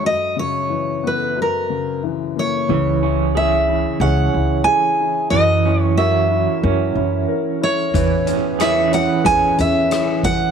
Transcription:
0.03 F#2 D#5
0.36 C#3 C#5
0.70 E3
1.03 B3 B4
1.36 F#2
1.42 A#4
1.70 C#3
2.03 E3
2.36 A#3 C#5
2.69 C#2 C#3 E3
3.02 C#4 E4
3.35 G#4 E5
3.68 E4
4.00 C#2 C#4 G#4 F#5
4.34 C#2 E4
4.64 G#4 G#5
5.01 E4
5.30 F#2 E3 F#3 D#5
5.66 C#4 E4
5.82 C#5
5.97 F#4 A#4 E5
6.31 E4
6.62 F#2 C#4 A#4
6.95 F#2 E4
7.28 A#4
7.61 E4 C#5
7.94 E2 E3 C#4 B4, kick, closed hi-hat
8.27 C#4, closed hi-hat
8.59 E4 G#4 E5, cross-stick, closed hi-hat
8.92 C#4 F#5, closed hi-hat
9.24 E2 C#4 G#4 G#5, kick, closed hi-hat
9.58 E2 C#4 E5, closed hi-hat
9.90 E4, cross-stick, closed hi-hat
10.23 C#4 F#5, kick, closed hi-hat

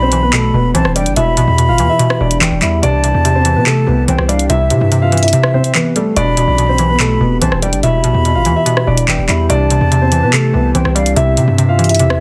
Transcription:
Already playing: B1 B2 E3 B3 G4 B5
0.02 C4 C5
0.12 E3, closed hi-hat
0.23 B3 B4
0.33 B2 A3 A4, clap
0.54 E1 B2 B3 B4
0.74 B1 E3 C4 C5 A5, closed hi-hat
0.85 E1, cross-stick
0.96 G3 D4 D5 G5, closed hi-hat
1.06 G1, closed hi-hat
1.16 E1 B2 E4 E5 B5, closed hi-hat
1.37 B1 B2, closed hi-hat
1.48 E2
1.58 B2, closed hi-hat
1.68 G1 F4 F5
1.78 E2 E3, closed hi-hat
1.90 E4 E5
1.99 B2, closed hi-hat
2.10 cross-stick
2.21 E1 B2 D4 D5
2.31 closed hi-hat
2.41 E1 E3 G5, clap
2.52 E1
2.61 E2 G3 E4 E5 B5, clap, closed hi-hat
2.83 C2 C3 C4 D4 D5 A5, closed hi-hat
3.04 C3, closed hi-hat
3.14 E2
3.25 C3, closed hi-hat
3.35 C4 C5
3.45 E3, closed hi-hat
3.56 C3 B3 B4
3.66 C3 A3 A4, clap
3.87 C2 C3 B3 B4
4.08 C2 E3 C4 C5 G5, closed hi-hat
4.19 C2, cross-stick
4.29 G3 D4 D5 F5, closed hi-hat
4.39 closed hi-hat
4.50 C2 C3 E4 E5, closed hi-hat
4.70 C3, closed hi-hat
4.81 G2
4.92 C3, closed hi-hat
5.02 F4 F5
5.12 E3, closed hi-hat
5.17 closed hi-hat
5.23 E4 E5, closed hi-hat
5.28 closed hi-hat
5.33 C3, closed hi-hat
5.43 cross-stick
5.54 C3 C4 C5
5.64 closed hi-hat
5.75 E3 B3 B4, clap
5.96 G3 A3 A4, closed hi-hat
6.17 E1 B2 E3 B3 D4 G4 D5 B5, closed hi-hat
6.37 B2, closed hi-hat
6.48 B1
6.58 B2, closed hi-hat
6.69 C4 C5
6.78 E3, closed hi-hat
6.90 B3 B4
7.00 B2 A3 A4, clap
7.21 E1 B2 B3 B4
7.41 B1 E3 C4 C5 A5, closed hi-hat
7.52 E1, cross-stick
7.62 G3 D4 D5 G5, closed hi-hat
7.73 G1, closed hi-hat
7.83 E1 B2 E4 E5 B5, closed hi-hat
8.04 B1 B2, closed hi-hat
8.14 E2
8.25 B2, closed hi-hat
8.35 G1 F4 F5
8.45 E2 E3, closed hi-hat
8.56 E4 E5
8.66 B2, closed hi-hat
8.77 cross-stick
8.87 E1 B2 D4 D5
8.97 closed hi-hat
9.08 E1 E3 G5, clap
9.19 E1
9.28 E2 G3 E4 E5 B5, clap, closed hi-hat
9.49 C2 C3 C4 D4 D5 A5, closed hi-hat
9.70 C3, closed hi-hat
9.81 E2
9.92 C3, closed hi-hat
10.02 C4 C5
10.12 E3, closed hi-hat
10.23 C3 B3 B4
10.33 C3 A3 A4, clap
10.54 C2 C3 B3 B4
10.75 C2 E3 C4 C5 G5, closed hi-hat
10.85 C2, cross-stick
10.95 G3 D4 D5 F5, closed hi-hat
11.06 closed hi-hat
11.16 C2 C3 E4 E5, closed hi-hat
11.37 C3, closed hi-hat
11.48 G2
11.58 C3, closed hi-hat
11.69 F4 F5
11.79 E3, closed hi-hat
11.84 closed hi-hat
11.89 E4 E5, closed hi-hat
11.95 closed hi-hat
11.99 E2 C3, closed hi-hat
12.10 cross-stick

